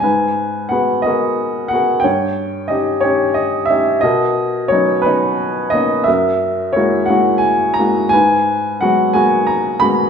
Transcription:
upright piano
0.00 G#2 B4 G#5
0.69 B3 F#4 G#4 B4 F#5
1.02 B3 F#4 D#5
1.06 G#4 A#4
1.68 F#5
1.73 B3 F#4 G#4 A#4
2.00 G5
2.04 G2 C#5
2.68 C#4 D#4 G4 D#5
3.01 C#4 D#4 G4 C#5
3.34 D#5
3.66 E5
3.70 C#4 D#4 G4
4.01 B2 A#4 D#5
4.68 F#3 B3 D#4 C#5
4.72 C#4
5.02 B3 C#4 B4
5.06 D#4
5.70 A#3 B3 C#4 D#5
5.74 D#4
6.04 E5
6.08 F#2 A#4
6.73 G#3 A#3 E4 C#5
6.77 F#4
7.06 G#3 A#3 F#5
7.10 E4 F#4
7.38 G#5
7.74 A#5
7.79 G#3 A#3 E4 F#4
8.09 G#2 G#5
8.13 B4
8.81 F#3 G#3 B3 F#4 F#5
9.13 G#3 A#3 B3 F#4 G#5
9.47 A#5
9.80 G#3 A#3 B3 F#4 B5

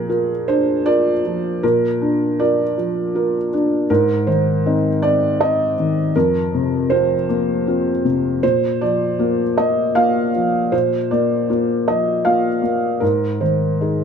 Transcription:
felt piano
Already playing: A#2 F3 G#4 A#4
0.09 F4 A#4
0.48 D4 C5
0.86 F4 A#4 D5
1.26 F3
1.63 A#2 A#4
2.02 D4
2.39 F4 A#4 D5
2.78 F3
3.15 F4 A#4
3.53 D4
3.90 G#2 A#4
4.27 D#3 C5
4.66 C4 D#4
5.02 C4 D5
5.41 C4 D#4 D#5
5.79 D#3
6.16 F2 A#4
6.54 C3
6.90 C4 F4 C5
7.29 A#3
7.67 C4 F4
8.05 C3
8.43 A#2 C5
8.81 F3 D5
9.19 A#3 F4
9.58 A#3 D#5
9.95 A#3 F4 F5
10.35 F3
10.72 A#2 C5
11.11 A#3 D5
11.49 A#3 F4
11.88 F3 D#5
12.25 A#3 F4 F5
12.62 A#3
13.00 G#2 A#4
13.41 D#3 C5
13.81 D#4 G#4

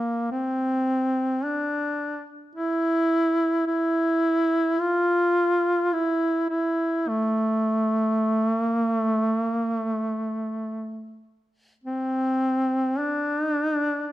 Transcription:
duduk
Already playing: A#3
0.32 C4
1.44 D4
2.55 E4
3.67 E4
4.80 F4
5.93 E4
6.50 E4
7.09 A3
8.60 A#3
8.92 A3
9.44 A#3
9.75 A3
11.84 C4
12.99 D4
13.40 D#4
13.52 D4

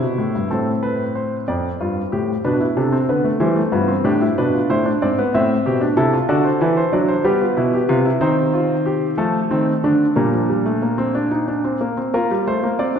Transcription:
grand piano
Already playing: E4 C5
0.02 B2
0.18 A2
0.35 G2
0.51 A2 C4 A4
0.83 B4
1.15 C5
1.48 F2 D5
1.80 G2 F4
2.12 A2 G4
2.44 B2 D4 B4
2.60 E4
2.77 C3 D4 A4
2.92 C4
3.09 D3 B3 B4
3.24 A3
3.40 E3 G3 E4 C5
3.56 A3
3.72 G2 B3 F4
3.88 C4
4.04 A2 D4 G4
4.21 E4
4.38 B2 D4 B4
4.54 F4
4.70 A2 E4 C5
4.86 D4
5.02 G#2 C4 D5
5.18 B3
5.34 A2 C4 E5
5.66 B2 G4
5.81 D4
5.97 C3 E4 A4
6.13 F4
6.29 D3 F#4 A4 D5
6.45 C5
6.61 E3 E4 B4
6.77 C5
6.93 F#3 D4 D5
7.08 C5
7.24 G3 B3 G4 B4
7.41 F4
7.57 B2 E4
7.74 G4
7.89 C3 F4
8.05 E4
8.21 D#3 C4 D#4 C5
8.54 F4
8.86 G4
9.18 F3 A3 A4
9.51 D#3 C4
9.84 D3 D4
10.16 A#2 G3 D4 A#4
10.33 F3
10.49 G3
10.65 A3
10.82 A#3
10.98 C4
11.15 D4
11.31 D#4
11.48 D4
11.64 C4
11.81 A#3
11.97 C4
12.14 A#3 F4 A#4
12.31 G3
12.47 A3 C5
12.63 A#3
12.79 C4 D5
12.96 D4

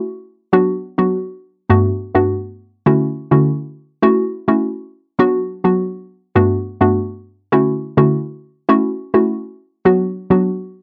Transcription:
synth pluck
0.53 F#3 B3 D4 F#4
0.98 F#3 B3 D4 F#4
1.70 G2 A3 B3 D4 F#4
2.15 G2 A3 B3 D4 F#4
2.86 D3 A3 C#4 E4 F#4
3.31 D3 A3 C#4 E4 F#4
4.03 A3 C#4 E4 F#4
4.48 A3 C#4 E4 F#4
5.19 F#3 B3 D4 F#4
5.64 F#3 B3 D4 F#4
6.35 G2 A3 B3 D4 F#4
6.81 G2 A3 B3 D4 F#4
7.52 D3 A3 C#4 E4 F#4
7.97 D3 A3 C#4 E4 F#4
8.69 A3 C#4 E4 F#4
9.14 A3 C#4 E4 F#4
9.85 F#3 B3 D4 F#4
10.30 F#3 B3 D4 F#4

